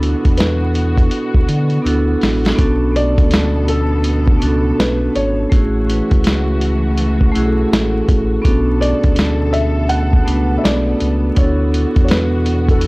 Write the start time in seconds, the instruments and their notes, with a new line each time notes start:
Already playing: sub bass D2, string section B2 B3 F#4, vibraphone B3 D4 E4 F#4 A4, felt piano A4
0.03 closed hi-hat
0.25 sub bass E2, kick, closed hi-hat
0.37 felt piano B4, snare, closed hi-hat
0.75 closed hi-hat
0.97 kick, closed hi-hat
1.11 closed hi-hat
1.34 sub bass D2, kick
1.49 sub bass D3, closed hi-hat
1.70 closed hi-hat
1.82 sub bass D2, vibraphone B3 D4 E4
1.86 vibraphone F#4 A4, closed hi-hat
2.21 sub bass A1, snare, open hi-hat
2.45 snare, closed hi-hat
2.55 sub bass B1, string section B2 B3 A4, vibraphone B3 C#4 D4, kick, closed hi-hat
2.60 vibraphone F#4 A4
2.92 vibraphone A3 B3 D4, felt piano D5, closed hi-hat
2.96 vibraphone F#4 A4
3.18 sub bass D2, kick, closed hi-hat
3.31 snare, closed hi-hat
3.68 felt piano A4, closed hi-hat
4.04 closed hi-hat
4.27 kick
4.38 vibraphone B3 C#4 D4, closed hi-hat
4.42 sub bass C#2, vibraphone F#4 A4
4.79 sub bass B1, felt piano B4, snare, closed hi-hat
5.15 sub bass G#1, felt piano C#5, closed hi-hat
5.49 sub bass A1, string section E3 A3 F#4, vibraphone A3 C#4 E4, kick, closed hi-hat
5.53 vibraphone F#4 G#4
5.86 vibraphone A3 C#4 E4 F#4, closed hi-hat
5.91 vibraphone B4
6.11 sub bass C#2, kick, closed hi-hat
6.24 snare, closed hi-hat
6.61 closed hi-hat
6.98 closed hi-hat
7.21 kick
7.32 vibraphone A3 C#4 E4, closed hi-hat
7.36 sub bass B1, vibraphone F#4 G#4
7.44 vibraphone A4
7.72 sub bass A1, snare, closed hi-hat
8.08 sub bass A1, kick, closed hi-hat
8.42 sub bass B1, string section B2 B3 A4, vibraphone B3 C#4 D4 F#4, kick, closed hi-hat
8.47 vibraphone A4
8.78 vibraphone A3 B3 D4, felt piano D5
8.82 vibraphone F#4 G#4, closed hi-hat
8.90 vibraphone A4
9.04 sub bass D2, kick, closed hi-hat
9.16 snare, closed hi-hat
9.53 felt piano E5, closed hi-hat
9.89 felt piano F#5, closed hi-hat
10.13 kick
10.25 sub bass C#2, vibraphone A3 B3 D4, closed hi-hat
10.29 vibraphone F#4 B4
10.58 felt piano E5
10.64 sub bass B1, felt piano D5, snare, closed hi-hat
11.00 sub bass C#2, closed hi-hat
11.35 sub bass D2, string section B2 F#4, vibraphone B3 D4 E4, felt piano C#5, kick, closed hi-hat
11.39 vibraphone F#4 A4
11.72 vibraphone B3 D4 E4, closed hi-hat
11.76 vibraphone F#4 A4
11.96 sub bass E2, kick, closed hi-hat
12.04 felt piano C#5
12.09 felt piano B4, snare, closed hi-hat
12.46 closed hi-hat
12.69 felt piano A4, kick, closed hi-hat
12.81 closed hi-hat